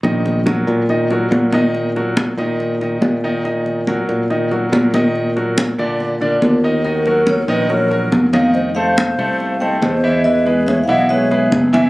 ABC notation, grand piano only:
X:1
M:4/4
L:1/8
Q:1/4=141
K:Ebm
V:1 name="Grand piano"
[E,Ee]2 [G,GB]2 [E,Ee] [G,GB] [G,GB] [E,Ee]- | [E,Ee] [G,GB]2 [E,Ee]2 [E,Ee]2 [E,Ee] | [E,Ee]2 [G,GB]2 [E,Ee] [G,GB] [G,GB] [E,Ee]- | [E,Ee] [G,GB]2 [=D,=D=d]2 [D,Dd]2 [E,Ee] |
[E,Ee] [G,GB]2 [E,Ee] [G,GB] [G,GB]2 [E,Ee]- | [E,Ee] [=A,=A=c]2 [A,Ac]2 [A,Ac]2 [_F,_F_f] | [=E,=E=e] [^G,^G=B]2 [E,Ee] [G,GB] [G,GB]2 [E,Ee] |]